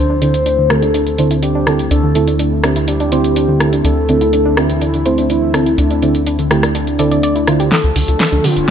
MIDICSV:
0, 0, Header, 1, 8, 480
1, 0, Start_track
1, 0, Tempo, 483871
1, 1896, Time_signature, 4, 2, 24, 8
1, 8634, End_track
2, 0, Start_track
2, 0, Title_t, "Soft synth lead"
2, 0, Program_c, 0, 80
2, 0, Note_on_c, 0, 72, 102
2, 695, Note_on_c, 0, 69, 89
2, 710, Note_off_c, 0, 72, 0
2, 1322, Note_off_c, 0, 69, 0
2, 1415, Note_on_c, 0, 67, 86
2, 1848, Note_off_c, 0, 67, 0
2, 1895, Note_on_c, 0, 69, 84
2, 2328, Note_off_c, 0, 69, 0
2, 2856, Note_on_c, 0, 67, 94
2, 3722, Note_off_c, 0, 67, 0
2, 3816, Note_on_c, 0, 69, 102
2, 4534, Note_on_c, 0, 64, 98
2, 4549, Note_off_c, 0, 69, 0
2, 5161, Note_off_c, 0, 64, 0
2, 5255, Note_on_c, 0, 64, 91
2, 5688, Note_off_c, 0, 64, 0
2, 5736, Note_on_c, 0, 62, 89
2, 6169, Note_off_c, 0, 62, 0
2, 6696, Note_on_c, 0, 62, 96
2, 7562, Note_off_c, 0, 62, 0
2, 7656, Note_on_c, 0, 69, 104
2, 8376, Note_on_c, 0, 65, 97
2, 8391, Note_off_c, 0, 69, 0
2, 8634, Note_off_c, 0, 65, 0
2, 8634, End_track
3, 0, Start_track
3, 0, Title_t, "Synth stab"
3, 0, Program_c, 1, 62
3, 214, Note_on_c, 1, 50, 79
3, 214, Note_on_c, 1, 60, 75
3, 214, Note_on_c, 1, 64, 74
3, 214, Note_on_c, 1, 69, 92
3, 337, Note_off_c, 1, 64, 0
3, 338, Note_off_c, 1, 50, 0
3, 338, Note_off_c, 1, 60, 0
3, 338, Note_off_c, 1, 69, 0
3, 694, Note_on_c, 1, 50, 89
3, 694, Note_on_c, 1, 60, 75
3, 694, Note_on_c, 1, 64, 80
3, 694, Note_on_c, 1, 67, 93
3, 818, Note_off_c, 1, 50, 0
3, 818, Note_off_c, 1, 60, 0
3, 818, Note_off_c, 1, 64, 0
3, 818, Note_off_c, 1, 67, 0
3, 1174, Note_on_c, 1, 72, 96
3, 1175, Note_on_c, 1, 50, 88
3, 1175, Note_on_c, 1, 60, 85
3, 1175, Note_on_c, 1, 64, 82
3, 1627, Note_off_c, 1, 50, 0
3, 1627, Note_off_c, 1, 60, 0
3, 1627, Note_off_c, 1, 64, 0
3, 1627, Note_off_c, 1, 72, 0
3, 1655, Note_on_c, 1, 50, 87
3, 1655, Note_on_c, 1, 60, 78
3, 1655, Note_on_c, 1, 64, 76
3, 1655, Note_on_c, 1, 69, 97
3, 1778, Note_off_c, 1, 50, 0
3, 1778, Note_off_c, 1, 60, 0
3, 1778, Note_off_c, 1, 64, 0
3, 1778, Note_off_c, 1, 69, 0
3, 2135, Note_on_c, 1, 50, 81
3, 2135, Note_on_c, 1, 60, 73
3, 2135, Note_on_c, 1, 64, 75
3, 2135, Note_on_c, 1, 69, 91
3, 2258, Note_off_c, 1, 50, 0
3, 2258, Note_off_c, 1, 60, 0
3, 2258, Note_off_c, 1, 64, 0
3, 2258, Note_off_c, 1, 69, 0
3, 2615, Note_on_c, 1, 64, 78
3, 2616, Note_on_c, 1, 50, 86
3, 2616, Note_on_c, 1, 60, 79
3, 2616, Note_on_c, 1, 67, 95
3, 2738, Note_off_c, 1, 50, 0
3, 2738, Note_off_c, 1, 60, 0
3, 2738, Note_off_c, 1, 64, 0
3, 2738, Note_off_c, 1, 67, 0
3, 3095, Note_on_c, 1, 50, 91
3, 3095, Note_on_c, 1, 60, 86
3, 3095, Note_on_c, 1, 64, 83
3, 3095, Note_on_c, 1, 72, 98
3, 3547, Note_off_c, 1, 50, 0
3, 3547, Note_off_c, 1, 60, 0
3, 3547, Note_off_c, 1, 64, 0
3, 3547, Note_off_c, 1, 72, 0
3, 3575, Note_on_c, 1, 50, 89
3, 3575, Note_on_c, 1, 60, 82
3, 3575, Note_on_c, 1, 69, 97
3, 3576, Note_on_c, 1, 64, 82
3, 3698, Note_off_c, 1, 50, 0
3, 3698, Note_off_c, 1, 60, 0
3, 3698, Note_off_c, 1, 64, 0
3, 3698, Note_off_c, 1, 69, 0
3, 4056, Note_on_c, 1, 50, 79
3, 4056, Note_on_c, 1, 60, 74
3, 4056, Note_on_c, 1, 64, 78
3, 4056, Note_on_c, 1, 69, 89
3, 4178, Note_off_c, 1, 50, 0
3, 4178, Note_off_c, 1, 69, 0
3, 4179, Note_off_c, 1, 60, 0
3, 4179, Note_off_c, 1, 64, 0
3, 4535, Note_on_c, 1, 50, 89
3, 4535, Note_on_c, 1, 60, 78
3, 4535, Note_on_c, 1, 64, 78
3, 4535, Note_on_c, 1, 67, 95
3, 4658, Note_off_c, 1, 50, 0
3, 4658, Note_off_c, 1, 60, 0
3, 4658, Note_off_c, 1, 64, 0
3, 4658, Note_off_c, 1, 67, 0
3, 5015, Note_on_c, 1, 50, 89
3, 5015, Note_on_c, 1, 60, 90
3, 5015, Note_on_c, 1, 64, 84
3, 5015, Note_on_c, 1, 72, 102
3, 5467, Note_off_c, 1, 50, 0
3, 5467, Note_off_c, 1, 60, 0
3, 5467, Note_off_c, 1, 64, 0
3, 5467, Note_off_c, 1, 72, 0
3, 5495, Note_on_c, 1, 50, 92
3, 5495, Note_on_c, 1, 60, 82
3, 5495, Note_on_c, 1, 64, 78
3, 5495, Note_on_c, 1, 69, 102
3, 5618, Note_off_c, 1, 50, 0
3, 5618, Note_off_c, 1, 60, 0
3, 5618, Note_off_c, 1, 64, 0
3, 5618, Note_off_c, 1, 69, 0
3, 5974, Note_on_c, 1, 50, 82
3, 5974, Note_on_c, 1, 60, 76
3, 5974, Note_on_c, 1, 64, 75
3, 5974, Note_on_c, 1, 69, 85
3, 6098, Note_off_c, 1, 50, 0
3, 6098, Note_off_c, 1, 60, 0
3, 6098, Note_off_c, 1, 64, 0
3, 6098, Note_off_c, 1, 69, 0
3, 6454, Note_on_c, 1, 50, 88
3, 6454, Note_on_c, 1, 60, 81
3, 6454, Note_on_c, 1, 67, 93
3, 6455, Note_on_c, 1, 64, 79
3, 6578, Note_off_c, 1, 50, 0
3, 6578, Note_off_c, 1, 60, 0
3, 6578, Note_off_c, 1, 64, 0
3, 6578, Note_off_c, 1, 67, 0
3, 6934, Note_on_c, 1, 50, 91
3, 6934, Note_on_c, 1, 60, 84
3, 6934, Note_on_c, 1, 64, 84
3, 6934, Note_on_c, 1, 69, 107
3, 7128, Note_off_c, 1, 50, 0
3, 7128, Note_off_c, 1, 60, 0
3, 7128, Note_off_c, 1, 64, 0
3, 7128, Note_off_c, 1, 69, 0
3, 7415, Note_on_c, 1, 50, 86
3, 7415, Note_on_c, 1, 62, 76
3, 7415, Note_on_c, 1, 65, 79
3, 7415, Note_on_c, 1, 72, 91
3, 7867, Note_off_c, 1, 50, 0
3, 7867, Note_off_c, 1, 62, 0
3, 7867, Note_off_c, 1, 65, 0
3, 7867, Note_off_c, 1, 72, 0
3, 7894, Note_on_c, 1, 50, 82
3, 7894, Note_on_c, 1, 65, 73
3, 7894, Note_on_c, 1, 69, 91
3, 7895, Note_on_c, 1, 62, 78
3, 8018, Note_off_c, 1, 50, 0
3, 8018, Note_off_c, 1, 62, 0
3, 8018, Note_off_c, 1, 65, 0
3, 8018, Note_off_c, 1, 69, 0
3, 8374, Note_on_c, 1, 65, 82
3, 8374, Note_on_c, 1, 67, 100
3, 8375, Note_on_c, 1, 50, 84
3, 8375, Note_on_c, 1, 62, 77
3, 8498, Note_off_c, 1, 50, 0
3, 8498, Note_off_c, 1, 62, 0
3, 8498, Note_off_c, 1, 65, 0
3, 8498, Note_off_c, 1, 67, 0
3, 8634, End_track
4, 0, Start_track
4, 0, Title_t, "Synth pluck"
4, 0, Program_c, 2, 84
4, 98, Note_on_c, 2, 62, 94
4, 147, Note_off_c, 2, 62, 0
4, 215, Note_on_c, 2, 62, 68
4, 332, Note_off_c, 2, 62, 0
4, 456, Note_on_c, 2, 62, 76
4, 540, Note_off_c, 2, 62, 0
4, 578, Note_on_c, 2, 50, 97
4, 626, Note_off_c, 2, 50, 0
4, 696, Note_on_c, 2, 57, 101
4, 780, Note_off_c, 2, 57, 0
4, 818, Note_on_c, 2, 62, 75
4, 924, Note_off_c, 2, 62, 0
4, 936, Note_on_c, 2, 62, 81
4, 1052, Note_off_c, 2, 62, 0
4, 1176, Note_on_c, 2, 62, 72
4, 1226, Note_off_c, 2, 62, 0
4, 1300, Note_on_c, 2, 64, 70
4, 1379, Note_off_c, 2, 64, 0
4, 1416, Note_on_c, 2, 62, 78
4, 1527, Note_off_c, 2, 62, 0
4, 1539, Note_on_c, 2, 62, 96
4, 1587, Note_off_c, 2, 62, 0
4, 1656, Note_on_c, 2, 62, 72
4, 1773, Note_off_c, 2, 62, 0
4, 1896, Note_on_c, 2, 62, 83
4, 1980, Note_off_c, 2, 62, 0
4, 2020, Note_on_c, 2, 50, 98
4, 2067, Note_off_c, 2, 50, 0
4, 2136, Note_on_c, 2, 57, 88
4, 2220, Note_off_c, 2, 57, 0
4, 2259, Note_on_c, 2, 62, 76
4, 2363, Note_off_c, 2, 62, 0
4, 2375, Note_on_c, 2, 62, 79
4, 2492, Note_off_c, 2, 62, 0
4, 2616, Note_on_c, 2, 62, 80
4, 2666, Note_off_c, 2, 62, 0
4, 2738, Note_on_c, 2, 64, 73
4, 2819, Note_off_c, 2, 64, 0
4, 2856, Note_on_c, 2, 62, 76
4, 2967, Note_off_c, 2, 62, 0
4, 2979, Note_on_c, 2, 62, 94
4, 3027, Note_off_c, 2, 62, 0
4, 3095, Note_on_c, 2, 62, 75
4, 3212, Note_off_c, 2, 62, 0
4, 3335, Note_on_c, 2, 62, 80
4, 3420, Note_off_c, 2, 62, 0
4, 3458, Note_on_c, 2, 50, 90
4, 3506, Note_off_c, 2, 50, 0
4, 3575, Note_on_c, 2, 57, 88
4, 3659, Note_off_c, 2, 57, 0
4, 3698, Note_on_c, 2, 62, 76
4, 3804, Note_off_c, 2, 62, 0
4, 3816, Note_on_c, 2, 62, 82
4, 3932, Note_off_c, 2, 62, 0
4, 4056, Note_on_c, 2, 62, 65
4, 4106, Note_off_c, 2, 62, 0
4, 4179, Note_on_c, 2, 64, 77
4, 4259, Note_off_c, 2, 64, 0
4, 4295, Note_on_c, 2, 62, 76
4, 4406, Note_off_c, 2, 62, 0
4, 4418, Note_on_c, 2, 62, 102
4, 4466, Note_off_c, 2, 62, 0
4, 4536, Note_on_c, 2, 62, 75
4, 4652, Note_off_c, 2, 62, 0
4, 4776, Note_on_c, 2, 62, 78
4, 4860, Note_off_c, 2, 62, 0
4, 4899, Note_on_c, 2, 50, 95
4, 4947, Note_off_c, 2, 50, 0
4, 5016, Note_on_c, 2, 57, 96
4, 5100, Note_off_c, 2, 57, 0
4, 5138, Note_on_c, 2, 62, 75
4, 5243, Note_off_c, 2, 62, 0
4, 5255, Note_on_c, 2, 62, 73
4, 5372, Note_off_c, 2, 62, 0
4, 5496, Note_on_c, 2, 62, 71
4, 5546, Note_off_c, 2, 62, 0
4, 5618, Note_on_c, 2, 64, 77
4, 5699, Note_off_c, 2, 64, 0
4, 5735, Note_on_c, 2, 62, 88
4, 5846, Note_off_c, 2, 62, 0
4, 5858, Note_on_c, 2, 62, 94
4, 5907, Note_off_c, 2, 62, 0
4, 5975, Note_on_c, 2, 62, 70
4, 6092, Note_off_c, 2, 62, 0
4, 6216, Note_on_c, 2, 62, 77
4, 6300, Note_off_c, 2, 62, 0
4, 6337, Note_on_c, 2, 50, 96
4, 6386, Note_off_c, 2, 50, 0
4, 6455, Note_on_c, 2, 57, 98
4, 6540, Note_off_c, 2, 57, 0
4, 6578, Note_on_c, 2, 62, 75
4, 6683, Note_off_c, 2, 62, 0
4, 6695, Note_on_c, 2, 62, 79
4, 6812, Note_off_c, 2, 62, 0
4, 6936, Note_on_c, 2, 74, 74
4, 7020, Note_off_c, 2, 74, 0
4, 7057, Note_on_c, 2, 74, 76
4, 7163, Note_off_c, 2, 74, 0
4, 7175, Note_on_c, 2, 74, 92
4, 7259, Note_off_c, 2, 74, 0
4, 7297, Note_on_c, 2, 64, 71
4, 7378, Note_off_c, 2, 64, 0
4, 7415, Note_on_c, 2, 64, 72
4, 7500, Note_off_c, 2, 64, 0
4, 7538, Note_on_c, 2, 67, 76
4, 7619, Note_off_c, 2, 67, 0
4, 7656, Note_on_c, 2, 62, 84
4, 7772, Note_off_c, 2, 62, 0
4, 7896, Note_on_c, 2, 62, 70
4, 7946, Note_off_c, 2, 62, 0
4, 8018, Note_on_c, 2, 65, 75
4, 8099, Note_off_c, 2, 65, 0
4, 8136, Note_on_c, 2, 62, 76
4, 8246, Note_off_c, 2, 62, 0
4, 8257, Note_on_c, 2, 62, 98
4, 8306, Note_off_c, 2, 62, 0
4, 8375, Note_on_c, 2, 62, 79
4, 8492, Note_off_c, 2, 62, 0
4, 8634, End_track
5, 0, Start_track
5, 0, Title_t, "Analog synth pad"
5, 0, Program_c, 3, 89
5, 0, Note_on_c, 3, 50, 81
5, 0, Note_on_c, 3, 57, 73
5, 0, Note_on_c, 3, 60, 74
5, 0, Note_on_c, 3, 64, 93
5, 7616, Note_off_c, 3, 50, 0
5, 7616, Note_off_c, 3, 57, 0
5, 7616, Note_off_c, 3, 60, 0
5, 7616, Note_off_c, 3, 64, 0
5, 7656, Note_on_c, 3, 50, 82
5, 7656, Note_on_c, 3, 53, 81
5, 7656, Note_on_c, 3, 62, 74
5, 7656, Note_on_c, 3, 69, 95
5, 8634, Note_off_c, 3, 50, 0
5, 8634, Note_off_c, 3, 53, 0
5, 8634, Note_off_c, 3, 62, 0
5, 8634, Note_off_c, 3, 69, 0
5, 8634, End_track
6, 0, Start_track
6, 0, Title_t, "Analog synth bass"
6, 0, Program_c, 4, 38
6, 0, Note_on_c, 4, 38, 83
6, 1871, Note_off_c, 4, 38, 0
6, 1895, Note_on_c, 4, 38, 83
6, 3792, Note_off_c, 4, 38, 0
6, 3815, Note_on_c, 4, 38, 85
6, 5712, Note_off_c, 4, 38, 0
6, 5734, Note_on_c, 4, 38, 81
6, 7631, Note_off_c, 4, 38, 0
6, 7778, Note_on_c, 4, 38, 72
6, 7857, Note_off_c, 4, 38, 0
6, 7896, Note_on_c, 4, 38, 89
6, 7978, Note_off_c, 4, 38, 0
6, 8018, Note_on_c, 4, 38, 80
6, 8097, Note_off_c, 4, 38, 0
6, 8258, Note_on_c, 4, 38, 73
6, 8337, Note_off_c, 4, 38, 0
6, 8497, Note_on_c, 4, 26, 77
6, 8634, Note_off_c, 4, 26, 0
6, 8634, End_track
7, 0, Start_track
7, 0, Title_t, "Riser"
7, 0, Program_c, 5, 103
7, 7655, Note_on_c, 5, 60, 75
7, 8634, Note_off_c, 5, 60, 0
7, 8634, End_track
8, 0, Start_track
8, 0, Title_t, "Drums"
8, 216, Note_on_c, 9, 42, 68
8, 315, Note_off_c, 9, 42, 0
8, 339, Note_on_c, 9, 42, 50
8, 438, Note_off_c, 9, 42, 0
8, 457, Note_on_c, 9, 42, 61
8, 556, Note_off_c, 9, 42, 0
8, 696, Note_on_c, 9, 37, 72
8, 696, Note_on_c, 9, 42, 67
8, 795, Note_off_c, 9, 37, 0
8, 795, Note_off_c, 9, 42, 0
8, 819, Note_on_c, 9, 42, 48
8, 918, Note_off_c, 9, 42, 0
8, 936, Note_on_c, 9, 42, 67
8, 1035, Note_off_c, 9, 42, 0
8, 1058, Note_on_c, 9, 42, 31
8, 1157, Note_off_c, 9, 42, 0
8, 1175, Note_on_c, 9, 42, 66
8, 1274, Note_off_c, 9, 42, 0
8, 1298, Note_on_c, 9, 42, 47
8, 1397, Note_off_c, 9, 42, 0
8, 1414, Note_on_c, 9, 42, 69
8, 1513, Note_off_c, 9, 42, 0
8, 1655, Note_on_c, 9, 37, 55
8, 1655, Note_on_c, 9, 42, 66
8, 1754, Note_off_c, 9, 37, 0
8, 1754, Note_off_c, 9, 42, 0
8, 1779, Note_on_c, 9, 42, 46
8, 1878, Note_off_c, 9, 42, 0
8, 1895, Note_on_c, 9, 42, 68
8, 1994, Note_off_c, 9, 42, 0
8, 2135, Note_on_c, 9, 42, 72
8, 2234, Note_off_c, 9, 42, 0
8, 2258, Note_on_c, 9, 42, 47
8, 2357, Note_off_c, 9, 42, 0
8, 2375, Note_on_c, 9, 42, 67
8, 2474, Note_off_c, 9, 42, 0
8, 2615, Note_on_c, 9, 37, 74
8, 2615, Note_on_c, 9, 42, 70
8, 2714, Note_off_c, 9, 37, 0
8, 2714, Note_off_c, 9, 42, 0
8, 2738, Note_on_c, 9, 42, 49
8, 2837, Note_off_c, 9, 42, 0
8, 2855, Note_on_c, 9, 42, 72
8, 2954, Note_off_c, 9, 42, 0
8, 2978, Note_on_c, 9, 42, 35
8, 3077, Note_off_c, 9, 42, 0
8, 3095, Note_on_c, 9, 42, 75
8, 3194, Note_off_c, 9, 42, 0
8, 3218, Note_on_c, 9, 42, 47
8, 3318, Note_off_c, 9, 42, 0
8, 3336, Note_on_c, 9, 42, 76
8, 3435, Note_off_c, 9, 42, 0
8, 3576, Note_on_c, 9, 37, 58
8, 3576, Note_on_c, 9, 42, 68
8, 3675, Note_off_c, 9, 37, 0
8, 3675, Note_off_c, 9, 42, 0
8, 3699, Note_on_c, 9, 42, 49
8, 3798, Note_off_c, 9, 42, 0
8, 3816, Note_on_c, 9, 42, 69
8, 3915, Note_off_c, 9, 42, 0
8, 4055, Note_on_c, 9, 42, 75
8, 4154, Note_off_c, 9, 42, 0
8, 4178, Note_on_c, 9, 42, 52
8, 4278, Note_off_c, 9, 42, 0
8, 4296, Note_on_c, 9, 42, 68
8, 4395, Note_off_c, 9, 42, 0
8, 4536, Note_on_c, 9, 37, 72
8, 4536, Note_on_c, 9, 42, 71
8, 4635, Note_off_c, 9, 37, 0
8, 4635, Note_off_c, 9, 42, 0
8, 4659, Note_on_c, 9, 42, 51
8, 4758, Note_off_c, 9, 42, 0
8, 4776, Note_on_c, 9, 42, 70
8, 4875, Note_off_c, 9, 42, 0
8, 4898, Note_on_c, 9, 42, 35
8, 4998, Note_off_c, 9, 42, 0
8, 5016, Note_on_c, 9, 42, 75
8, 5115, Note_off_c, 9, 42, 0
8, 5139, Note_on_c, 9, 42, 47
8, 5238, Note_off_c, 9, 42, 0
8, 5255, Note_on_c, 9, 42, 80
8, 5355, Note_off_c, 9, 42, 0
8, 5496, Note_on_c, 9, 37, 57
8, 5496, Note_on_c, 9, 42, 75
8, 5596, Note_off_c, 9, 37, 0
8, 5596, Note_off_c, 9, 42, 0
8, 5619, Note_on_c, 9, 42, 49
8, 5718, Note_off_c, 9, 42, 0
8, 5736, Note_on_c, 9, 42, 75
8, 5835, Note_off_c, 9, 42, 0
8, 5858, Note_on_c, 9, 42, 36
8, 5958, Note_off_c, 9, 42, 0
8, 5976, Note_on_c, 9, 42, 77
8, 6075, Note_off_c, 9, 42, 0
8, 6098, Note_on_c, 9, 42, 50
8, 6198, Note_off_c, 9, 42, 0
8, 6215, Note_on_c, 9, 42, 74
8, 6314, Note_off_c, 9, 42, 0
8, 6338, Note_on_c, 9, 42, 35
8, 6437, Note_off_c, 9, 42, 0
8, 6456, Note_on_c, 9, 37, 66
8, 6456, Note_on_c, 9, 42, 71
8, 6555, Note_off_c, 9, 37, 0
8, 6555, Note_off_c, 9, 42, 0
8, 6579, Note_on_c, 9, 37, 57
8, 6579, Note_on_c, 9, 42, 51
8, 6678, Note_off_c, 9, 37, 0
8, 6678, Note_off_c, 9, 42, 0
8, 6695, Note_on_c, 9, 42, 73
8, 6795, Note_off_c, 9, 42, 0
8, 6819, Note_on_c, 9, 42, 35
8, 6918, Note_off_c, 9, 42, 0
8, 6935, Note_on_c, 9, 42, 76
8, 7035, Note_off_c, 9, 42, 0
8, 7059, Note_on_c, 9, 42, 52
8, 7158, Note_off_c, 9, 42, 0
8, 7176, Note_on_c, 9, 42, 79
8, 7275, Note_off_c, 9, 42, 0
8, 7298, Note_on_c, 9, 42, 35
8, 7397, Note_off_c, 9, 42, 0
8, 7415, Note_on_c, 9, 37, 53
8, 7415, Note_on_c, 9, 42, 77
8, 7514, Note_off_c, 9, 37, 0
8, 7514, Note_off_c, 9, 42, 0
8, 7538, Note_on_c, 9, 42, 53
8, 7637, Note_off_c, 9, 42, 0
8, 7655, Note_on_c, 9, 38, 45
8, 7655, Note_on_c, 9, 42, 48
8, 7754, Note_off_c, 9, 38, 0
8, 7754, Note_off_c, 9, 42, 0
8, 7777, Note_on_c, 9, 42, 26
8, 7877, Note_off_c, 9, 42, 0
8, 7895, Note_on_c, 9, 46, 100
8, 7994, Note_off_c, 9, 46, 0
8, 8018, Note_on_c, 9, 42, 54
8, 8117, Note_off_c, 9, 42, 0
8, 8135, Note_on_c, 9, 38, 45
8, 8135, Note_on_c, 9, 42, 45
8, 8234, Note_off_c, 9, 38, 0
8, 8234, Note_off_c, 9, 42, 0
8, 8258, Note_on_c, 9, 42, 25
8, 8357, Note_off_c, 9, 42, 0
8, 8375, Note_on_c, 9, 46, 86
8, 8474, Note_off_c, 9, 46, 0
8, 8498, Note_on_c, 9, 42, 54
8, 8597, Note_off_c, 9, 42, 0
8, 8634, End_track
0, 0, End_of_file